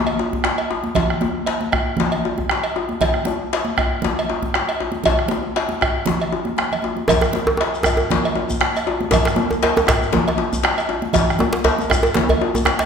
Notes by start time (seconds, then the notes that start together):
0.07 cowbell
0.19 bombo rim, djembe tone
0.33 bombo rim, bombo low, high conga
0.44 bombo rim, djembe slap
0.58 cowbell, high conga
0.70 djembe tone
0.84 high conga
0.95 bombo rim, bombo low, cowbell, djembe slap, low conga, djembe bass
1.10 bombo rim
1.21 bombo rim, high conga, djembe tone
1.46 cowbell, djembe slap
1.61 djembe slap, high conga
1.72 bombo rim, bombo low, cowbell, high conga, djembe tone
1.86 high conga
1.97 djembe slap, high conga, low conga, djembe bass
2.12 cowbell
2.24 bombo rim, djembe tone
2.38 bombo rim, bombo low, high conga
2.50 bombo rim, djembe slap
2.64 cowbell, high conga
2.76 djembe tone
2.89 high conga
3.01 bombo rim, bombo low, cowbell, djembe slap, low conga, djembe bass
3.14 bombo rim
3.25 bombo rim, high conga, djembe tone
3.53 cowbell, djembe slap
3.65 djembe slap, high conga
3.77 bombo rim, bombo low, cowbell, high conga, djembe tone
3.91 high conga
4.02 djembe slap, high conga, low conga, djembe bass
4.19 cowbell
4.29 bombo rim, djembe tone
4.42 bombo rim, bombo low, high conga
4.54 bombo rim, djembe slap
4.68 cowbell, high conga
4.80 djembe tone
4.92 high conga
5.04 bombo low, cowbell, djembe slap, high conga, low conga, djembe bass
5.19 bombo rim, djembe slap
5.28 bombo rim, djembe slap, high conga, djembe tone
5.43 high conga
5.56 bombo rim, cowbell, djembe slap
5.69 djembe slap, high conga
5.80 bombo rim, bombo low, cowbell, high conga, djembe tone
6.06 djembe slap, high conga, low conga, djembe bass
6.20 cowbell, djembe slap, high conga
6.32 bombo rim, djembe slap, djembe tone
6.45 bombo rim, djembe slap, high conga
6.57 bombo rim, djembe slap, high conga
6.72 bombo rim, cowbell, low conga
6.82 high conga, djembe tone
6.97 high conga
7.08 bombo rim, bombo low, cowbell, djembe slap, djembe tone, low conga, djembe bass, shekere
7.21 bombo rim, djembe tone, shekere
7.33 bombo rim, high conga, djembe tone
7.47 djembe tone
7.57 cowbell, djembe slap, djembe tone
7.74 djembe slap, shekere
7.83 bombo rim, bombo low, djembe tone, high conga, shekere
7.86 cowbell, djembe tone
7.97 djembe tone, high conga, shekere
8.11 djembe slap, high conga, low conga, djembe bass
8.25 cowbell
8.35 bombo rim, djembe tone
8.50 bombo rim, bombo low, high conga, shekere
8.61 bombo rim, djembe slap
8.75 cowbell, high conga, shekere
8.87 djembe tone
9.01 high conga
9.11 bombo rim, bombo low, cowbell, djembe slap, djembe tone, djembe bass, low conga, shekere
9.25 bombo rim, djembe slap, shekere
9.36 bombo rim, high conga, djembe tone
9.51 djembe tone, shekere
9.63 cowbell, djembe slap, djembe tone
9.77 high conga, djembe tone, shekere
9.87 bombo rim, bombo low, cowbell, djembe slap, djembe tone, shekere
10.02 high conga, shekere
10.13 djembe slap, djembe tone, high conga, djembe bass, low conga
10.28 cowbell, djembe tone
10.38 bombo rim, djembe tone
10.53 bombo rim, bombo low, high conga, shekere
10.63 bombo rim, djembe slap
10.77 cowbell, high conga, shekere
10.89 djembe tone
11.02 high conga
11.13 bombo rim, bombo low, cowbell, djembe slap, low conga, djembe bass, shekere
11.30 bombo rim, shekere
11.39 bombo rim, high conga, djembe tone
11.53 djembe slap
11.64 cowbell, djembe slap, djembe bass
11.79 djembe slap, high conga, shekere
11.90 cowbell, djembe tone, high conga
11.91 bombo rim, bombo low, djembe tone, shekere
12.03 djembe tone, high conga, shekere
12.14 djembe slap, high conga, low conga
12.17 djembe slap, djembe bass
12.29 cowbell, djembe bass
12.41 bombo rim, djembe tone
12.54 bombo rim, bombo low, high conga, djembe tone, shekere
12.65 bombo rim, djembe slap, djembe tone
12.79 cowbell, djembe slap, high conga, shekere